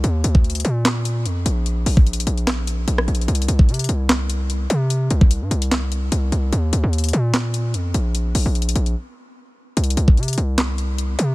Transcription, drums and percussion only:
0.04 closed hi-hat medium
0.24 closed hi-hat medium
0.35 kick loud
0.44 closed hi-hat medium
0.50 closed hi-hat medium
0.55 closed hi-hat medium
0.60 closed hi-hat medium
0.65 closed hi-hat medium
0.85 snare loud
0.85 clap loud
0.85 closed hi-hat medium
1.05 closed hi-hat medium
1.26 closed hi-hat medium
1.46 closed hi-hat medium
1.66 closed hi-hat medium
1.86 open hi-hat medium
1.97 kick loud
2.07 closed hi-hat medium
2.13 closed hi-hat medium
2.20 closed hi-hat medium
2.27 closed hi-hat medium
2.38 closed hi-hat soft
2.47 cross-stick medium
2.47 snare loud
2.47 clap loud
2.47 closed hi-hat medium
2.67 closed hi-hat medium
2.88 closed hi-hat medium
2.98 cross-stick loud
3.08 closed hi-hat soft
3.15 closed hi-hat medium
3.21 closed hi-hat medium
3.28 closed hi-hat medium
3.35 closed hi-hat medium
3.42 closed hi-hat medium
3.48 closed hi-hat medium
3.59 kick loud
3.69 closed hi-hat medium
3.74 closed hi-hat medium
3.79 closed hi-hat medium
3.84 closed hi-hat medium
3.89 closed hi-hat medium
4.09 snare loud
4.09 clap loud
4.09 closed hi-hat medium
4.30 closed hi-hat medium
4.50 closed hi-hat medium
4.70 closed hi-hat medium
4.90 closed hi-hat medium
5.11 closed hi-hat medium
5.21 kick loud
5.31 closed hi-hat medium
5.51 closed hi-hat soft
5.62 closed hi-hat medium
5.71 snare loud
5.71 clap loud
5.71 closed hi-hat medium
5.92 closed hi-hat medium
6.12 closed hi-hat medium
6.32 closed hi-hat medium
6.53 closed hi-hat medium
6.73 closed hi-hat medium
6.93 closed hi-hat medium
6.98 closed hi-hat medium
7.04 closed hi-hat medium
7.09 closed hi-hat medium
7.13 closed hi-hat medium
7.34 snare loud
7.34 clap loud
7.34 closed hi-hat medium
7.54 closed hi-hat medium
7.74 closed hi-hat medium
7.94 closed hi-hat medium
8.15 closed hi-hat medium
8.35 open hi-hat medium
8.55 closed hi-hat medium
8.62 closed hi-hat medium
8.69 closed hi-hat medium
8.76 closed hi-hat medium
8.86 closed hi-hat soft
9.77 closed hi-hat medium
9.84 closed hi-hat medium
9.90 closed hi-hat medium
9.97 closed hi-hat medium
10.08 kick loud
10.17 closed hi-hat soft
10.23 closed hi-hat medium
10.28 closed hi-hat medium
10.33 closed hi-hat medium
10.38 closed hi-hat medium
10.58 snare loud
10.58 clap loud
10.58 closed hi-hat medium
10.78 closed hi-hat medium
10.98 closed hi-hat medium
11.19 closed hi-hat medium

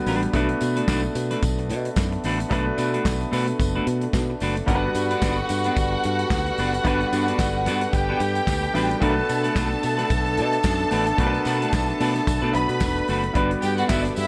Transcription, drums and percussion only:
0.06 open hi-hat medium
0.06 tambourine medium
0.23 closed hi-hat medium
0.33 kick loud
0.33 closed hi-hat medium
0.33 tambourine soft
0.49 closed hi-hat soft
0.61 closed hi-hat medium
0.61 tambourine medium
0.77 closed hi-hat medium
0.88 kick loud
0.88 snare loud
0.88 clap loud
0.88 tambourine medium
1.15 closed hi-hat medium
1.15 tambourine medium
1.31 snare soft
1.31 closed hi-hat medium
1.43 kick loud
1.43 closed hi-hat medium
1.43 tambourine medium
1.59 closed hi-hat soft
1.70 closed hi-hat medium
1.70 tambourine soft
1.85 closed hi-hat soft
1.96 kick loud
1.96 snare loud
1.96 clap medium
1.96 tambourine medium
2.12 closed hi-hat soft
2.24 open hi-hat medium
2.24 tambourine soft
2.40 closed hi-hat medium
2.51 kick loud
2.51 closed hi-hat medium
2.51 tambourine soft
2.78 closed hi-hat medium
2.78 tambourine medium
2.94 closed hi-hat medium
3.05 kick loud
3.05 snare loud
3.05 clap loud
3.05 tambourine medium
3.21 closed hi-hat soft
3.33 open hi-hat medium
3.33 tambourine medium
3.48 closed hi-hat soft
3.60 kick loud
3.60 closed hi-hat medium
3.60 tambourine medium
3.87 closed hi-hat medium
3.87 tambourine soft
4.01 closed hi-hat soft
4.13 kick loud
4.13 snare loud
4.13 clap medium
4.13 tambourine medium
4.40 open hi-hat medium
4.40 tambourine soft
4.57 closed hi-hat medium
4.68 kick loud
4.68 closed hi-hat medium
4.68 tambourine soft
4.95 closed hi-hat medium
4.95 tambourine medium
5.11 closed hi-hat medium
5.22 kick loud
5.22 snare loud
5.22 clap loud
5.22 tambourine loud
5.49 closed hi-hat medium
5.49 tambourine medium
5.64 closed hi-hat soft
5.76 kick loud
5.76 closed hi-hat medium
5.76 tambourine medium
6.03 closed hi-hat medium
6.03 tambourine soft
6.19 closed hi-hat soft
6.30 kick loud
6.30 snare loud
6.30 clap medium
6.30 tambourine medium
6.46 closed hi-hat soft
6.58 open hi-hat medium
6.58 tambourine soft
6.74 closed hi-hat medium
6.85 kick loud
6.85 closed hi-hat medium
6.85 tambourine soft
7.01 closed hi-hat soft
7.13 closed hi-hat medium
7.13 tambourine medium
7.28 closed hi-hat soft
7.39 kick loud
7.39 snare loud
7.39 clap loud
7.39 tambourine medium
7.66 closed hi-hat medium
7.66 tambourine medium
7.81 closed hi-hat medium
7.93 kick loud
7.93 closed hi-hat medium
7.93 tambourine medium
8.20 closed hi-hat medium
8.20 tambourine soft
8.35 closed hi-hat soft
8.47 kick loud
8.47 snare loud
8.47 clap medium
8.47 tambourine loud
8.63 closed hi-hat soft
8.75 open hi-hat medium
8.75 tambourine medium
8.91 closed hi-hat medium
9.02 kick loud
9.02 closed hi-hat medium
9.29 closed hi-hat medium
9.29 tambourine medium
9.44 closed hi-hat soft
9.56 kick loud
9.56 snare loud
9.56 clap medium
9.56 tambourine medium
9.83 closed hi-hat medium
9.83 tambourine medium
9.99 snare soft
9.99 closed hi-hat soft
10.10 kick loud
10.10 closed hi-hat medium
10.10 tambourine medium
10.26 closed hi-hat soft
10.37 closed hi-hat medium
10.37 tambourine soft
10.53 closed hi-hat soft
10.63 kick loud
10.63 snare loud
10.63 clap medium
10.63 tambourine loud
10.80 closed hi-hat soft
10.91 open hi-hat medium
10.91 tambourine medium
11.07 closed hi-hat medium
11.18 kick loud
11.18 closed hi-hat medium
11.34 closed hi-hat soft
11.45 closed hi-hat medium
11.45 tambourine medium
11.62 closed hi-hat medium
11.73 kick loud
11.73 snare loud
11.73 clap medium
11.73 tambourine loud
11.89 closed hi-hat soft
12.00 open hi-hat medium
12.00 tambourine medium
12.16 snare soft
12.16 closed hi-hat soft
12.27 kick loud
12.27 closed hi-hat medium
12.27 tambourine medium
12.53 closed hi-hat medium
12.53 tambourine soft
12.69 closed hi-hat soft
12.80 kick loud
12.80 snare loud
12.80 clap medium
12.80 tambourine medium
12.96 closed hi-hat soft
13.08 open hi-hat medium
13.08 tambourine medium
13.24 closed hi-hat medium
13.35 kick loud
13.35 closed hi-hat medium
13.51 closed hi-hat soft
13.62 closed hi-hat medium
13.62 tambourine medium
13.78 closed hi-hat soft
13.89 kick loud
13.89 snare loud
13.89 clap loud
13.89 tambourine loud
14.05 closed hi-hat medium
14.16 open hi-hat medium
14.16 tambourine medium

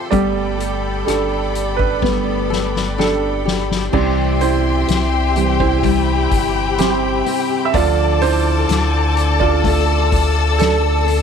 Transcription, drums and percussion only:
0.12 kick medium
0.12 closed hi-hat medium
0.60 closed hi-hat medium
1.08 cross-stick medium
1.08 closed hi-hat medium
1.55 closed hi-hat medium
1.79 kick medium
2.02 kick medium
2.02 snare medium
2.52 snare medium
2.76 snare medium
3.00 snare medium
3.48 snare medium
3.71 snare medium
3.93 kick medium
3.93 crash medium
4.41 hi-hat pedal medium
4.41 open hi-hat medium
4.88 snare loud
4.88 hi-hat pedal medium
4.88 open hi-hat medium
5.36 hi-hat pedal medium
5.36 open hi-hat medium
5.60 kick medium
5.83 kick medium
5.83 hi-hat pedal medium
5.83 open hi-hat medium
6.31 kick medium
6.31 hi-hat pedal medium
6.31 open hi-hat medium
6.78 snare loud
6.78 hi-hat pedal medium
6.78 open hi-hat medium
7.26 hi-hat pedal medium
7.26 open hi-hat medium
7.74 kick medium
7.74 hi-hat pedal medium
7.74 open hi-hat medium
8.21 hi-hat pedal medium
8.21 open hi-hat medium
8.69 snare medium
8.69 hi-hat pedal medium
8.69 open hi-hat medium
9.17 hi-hat pedal medium
9.17 open hi-hat medium
9.41 kick medium
9.64 kick loud
9.64 hi-hat pedal medium
9.64 open hi-hat medium
10.12 kick loud
10.12 hi-hat pedal medium
10.12 open hi-hat medium
10.59 snare loud
10.59 hi-hat pedal medium
10.59 open hi-hat medium
11.07 hi-hat pedal medium
11.07 open hi-hat medium

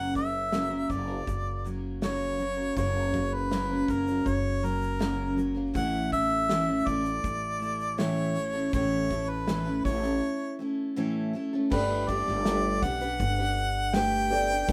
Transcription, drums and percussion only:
0.15 kick medium
0.15 shaker soft
0.52 snare loud
0.52 shaker medium
0.90 kick medium
0.90 shaker medium
1.27 kick medium
1.27 shaker medium
1.66 shaker soft
2.02 snare loud
2.02 shaker medium
2.39 shaker soft
2.77 kick loud
2.77 shaker medium
3.14 kick medium
3.14 shaker soft
3.51 snare medium
3.51 shaker medium
3.88 kick medium
3.88 shaker medium
4.08 shaker medium
4.26 kick medium
4.26 shaker medium
4.64 shaker soft
4.82 shaker soft
5.01 snare loud
5.01 shaker medium
5.38 shaker medium
5.75 kick loud
5.75 shaker medium
6.12 kick medium
6.12 shaker soft
6.50 snare loud
6.50 shaker medium
6.87 kick medium
6.87 shaker medium
7.05 shaker medium
7.24 kick medium
7.24 shaker medium
7.62 shaker soft
7.80 shaker soft
7.99 snare loud
7.99 shaker medium
8.36 shaker soft
8.73 kick loud
8.73 shaker medium
9.10 kick medium
9.10 shaker medium
9.48 snare loud
9.48 shaker medium
9.85 kick medium
9.85 shaker medium
10.04 shaker soft
11.71 kick loud
11.71 crash loud
12.09 kick medium
12.09 shaker soft
12.27 snare soft
12.45 snare loud
12.45 shaker medium
12.83 kick loud
12.83 shaker medium
13.01 shaker medium
13.20 kick medium
13.20 shaker medium
13.57 shaker soft
13.94 snare loud
13.94 shaker medium
14.31 shaker medium
14.50 shaker soft
14.68 kick loud
14.68 shaker medium

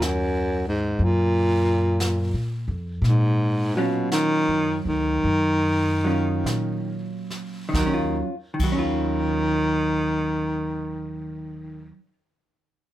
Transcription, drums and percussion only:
0.02 brush sweep soft
0.02 snare soft
0.02 hi-hat pedal medium
0.99 brush sweep soft
2.00 brush sweep soft
2.00 snare soft
2.00 hi-hat pedal soft
3.04 brush sweep soft
3.04 snare soft
4.12 brush sweep soft
4.12 snare soft
4.12 hi-hat pedal soft
5.26 brush sweep soft
6.46 brush sweep soft
6.46 snare soft
6.46 hi-hat pedal medium
7.30 snare soft
7.74 kick medium
7.74 snare medium
8.60 kick medium
8.60 crash medium

